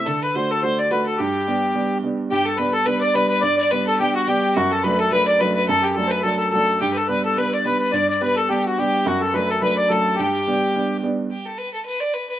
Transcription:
X:1
M:4/4
L:1/16
Q:"Swing" 1/4=213
K:G
V:1 name="Accordion"
A2 B2 c2 A2 c2 d2 B2 A2 | G12 z4 | G2 A2 B2 A2 B2 d2 B2 B2 | d2 d2 B2 A2 G2 F2 G4 |
F2 A2 B2 A2 B2 d2 B2 B2 | A2 G2 A3/2 c/2 B2 A2 A2 A4 | G2 A2 B2 A2 B2 d2 B2 B2 | d2 d2 B2 A2 G2 F2 G4 |
F2 A2 B2 A2 B2 d2 A4 | G12 z4 | z16 |]
V:2 name="Fiddle"
A2 B2 c2 A2 c2 d2 B2 A2 | G12 z4 | G2 A2 B2 A2 B2 d2 B2 B2 | d2 d2 B2 A2 G2 F2 G4 |
F2 A2 B2 A2 B2 d2 B2 B2 | A2 G2 A2 B2 A2 A2 A4 | G3/2 B/2 A2 B2 A2 B2 d2 B2 B2 | d2 d2 B2 A3/2 A/2 G3/2 G/2 F2 G4 |
F2 A2 B2 A2 B2 d2 A4 | G12 z4 | G2 A2 B2 A2 B2 d2 B2 B2 |]
V:3 name="Upright piano"
D,4 [A,DF]4 [A,DF]4 [A,DF]4 | G,,4 [G,B,D]4 [G,B,D]4 [G,B,D]4 | G,,4 [G,B,D]4 [G,B,D]4 [G,B,D]4 | G,,4 [G,B,D]4 [G,B,D]4 [G,B,D]4 |
F,,4 [F,A,D]4 [F,A,D]4 [F,A,D]4 | F,,4 [F,A,D]4 [F,A,D]4 [F,A,D]4 | G,,4 [G,B,D]4 [G,B,D]4 [G,B,D]4 | G,,4 [G,B,D]4 [G,B,D]4 [G,B,D]4 |
F,,4 [F,A,D]4 [F,A,D]4 [F,A,D]4 | G,,4 [G,B,D]4 [G,B,D]4 [G,B,D]4 | z16 |]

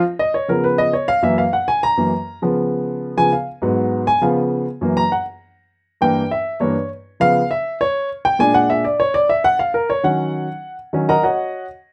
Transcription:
X:1
M:4/4
L:1/8
Q:1/4=201
K:Dbmix
V:1 name="Grand piano"
z e d B c e d f | _f =f g a b4 | z4 z a f z | z3 a f z3 |
z b g z4 z | =g2 =e2 d2 z2 | f2 _f2 d2 z =g | a ^f _f =d ^c d f ^f |
f B d g4- g | z2 [Begb] [Gdeg]3 z2 |]
V:2 name="Grand piano" clef=bass
z3 [D,F,C]3 z2 | [G,,_F,B,] z4 [G,,F,B,] z2 | [D,F,C]4- [D,F,C] [D,F,C] z2 | [A,,G,C]3 z [D,F,C]3 z |
[G,,_F,B,] z6 z | [=G,,=E,B,] z3 [G,,E,B,] z3 | [D,F,C] z6 z | [B,,A,=D]3 z4 z |
z3 [E,G,D]3 z2 | z [E,G,D] z6 |]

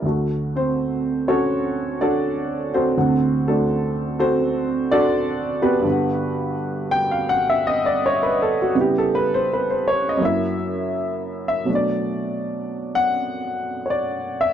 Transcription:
X:1
M:4/4
L:1/16
Q:"Swing" 1/4=82
K:D
V:1 name="Upright piano"
z2 [=C=c]4 [^CFA^c]4 [DFAd]4 [=CFA=c]2- | [=CFA=c]2 [A,DFA]4 [CFAc]4 [DFAd]4 [B,FGB]2- | [B,FGB]4 z2 g =f ^f e _e d c B A F | G A B =c B c ^c _e =e2 z4 e2 |
d6 f6 [cd]2 e2 |]
V:2 name="Upright piano" clef=bass
[D,,D,A,F]16 | [D,,=C,D,f]16 | [G,,D,B,f]16 | [C,G,B,E]8 [F,,F,^A,E]8 |
[B,,F,A,D]16 |]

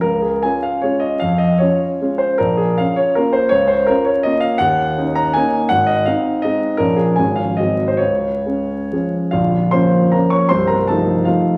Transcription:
X:1
M:3/4
L:1/16
Q:1/4=158
K:Db
V:1 name="Grand piano"
B2 A2 a2 f2 d2 e2 | f2 e2 d6 c2 | B2 A2 f2 d2 B2 c2 | d2 c2 B2 d2 e2 f2 |
g6 b2 a4 | g2 e2 f4 e4 | B2 A2 a2 f2 e3 c | d8- d2 z2 |
[K:Bbm] [Ff]4 [cc']4 [Bb]2 [dd']2 | [cc']2 [Bb]2 [=A=a]4 [Ff]4 |]
V:2 name="Grand piano"
D,,4 [DF]4 [A,DF]4 | F,,4 [DF]4 [A,DF]4 | B,,,4 [DF]4 [B,DF]4 | D,,4 [DF]4 [B,DF]4 |
E,,4 [DE]4 [B,DE]4 | A,,,4 [CE]4 [A,CE]4 | [B,,,F,D]4 [A,,,F,A,D]4 [A,,,G,A,C]4 | D,,4 [A,D]4 [F,A,D]4 |
[K:Bbm] [B,,,,B,,,]4 [F,B,D]4 [F,B,D]4 | [C,,,C,,]4 [F,=A,E]4 [F,A,E]4 |]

